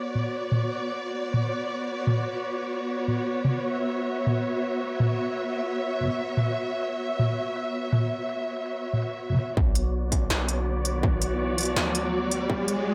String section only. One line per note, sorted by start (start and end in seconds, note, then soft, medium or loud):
0.00 9.53 B3 medium
0.00 9.53 F#4 medium
0.00 9.53 C#5 medium
0.00 3.70 D5 medium
3.72 9.55 E5 medium
9.57 12.94 B3 medium
9.57 12.94 F#4 medium
9.57 12.94 C#5 medium
9.57 12.94 D5 medium